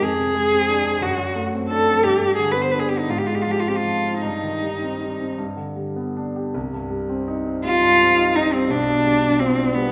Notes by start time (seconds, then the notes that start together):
0.02 F2 G#4
0.19 C3
0.35 G#3
0.52 C4
0.69 D4
0.85 C4
1.01 F#2 F#4
1.18 F#3
1.35 A3
1.53 C4
1.69 D4 A4
1.86 C4
2.04 G2 G4
2.22 G3
2.36 D3 G#4
2.51 B4
2.56 B3
2.62 C5
2.71 D4 B4
2.79 G#4
2.89 B3 G4
2.99 D#4
3.09 G#2 F4
3.18 G4
3.27 G#3 F4
3.35 G4
3.42 F4
3.46 F3
3.51 G4
3.60 F4
3.66 C4 G4
3.76 F4
3.84 F3
4.04 C4
4.21 G2 D#4
4.43 D#3
4.62 G3
4.82 C4
5.01 G3
5.20 C4
5.38 G2
5.56 D3
5.76 G3
5.96 B3
6.17 D4
6.36 G4
6.54 C2
6.73 G2
6.90 G3
7.09 C4
7.28 D#4
7.46 C4
7.65 G3 F4
7.82 G2
7.99 C4
8.17 D#4
8.35 C4 D#4
8.53 G3 C4
8.69 B1 D4
8.87 B2
9.04 G3
9.22 D4
9.40 C4 F4
9.58 D4
9.74 G3 B3